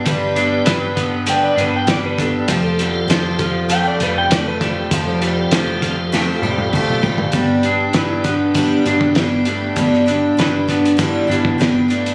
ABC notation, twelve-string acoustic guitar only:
X:1
M:4/4
L:1/8
Q:1/4=99
K:Gmix
V:1 name="Twelve-string acoustic guitar"
[G,,D,G,B,DB] [G,B,DB] [G,B,DB] [G,B,DB] [G,,D,G,B,DB] [G,B,DB] [G,B,DB] [G,B,DB] | [F,A,CFG] [CFG] [A,CFG] [CFG] [F,A,CFG] [CFG] [A,CFG] [CFG] | [F,A,CFG] [CFG] [A,CFG] [CFG] [F,A,CFG] [CFG] [A,CFG] [CFG] | [G,,D,G,B,DG] [G,B,DG] [G,B,DG] [G,B,DG] [G,,D,G,B,DG] [G,B,DG] [G,B,DG] [G,B,DG] |
[G,,D,G,B,DG] [G,B,DG] [G,B,DG] [G,B,DG] [G,,D,G,B,DG] [G,B,DG] [G,B,DG] [G,B,DG] |]